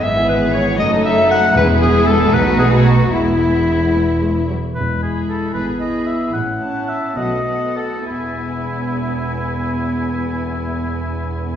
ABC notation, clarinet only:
X:1
M:6/8
L:1/8
Q:3/8=73
K:E
V:1 name="Clarinet"
e B c d e f | B G A B G F | E4- E z | z6 |
z6 | z6 | z6 |]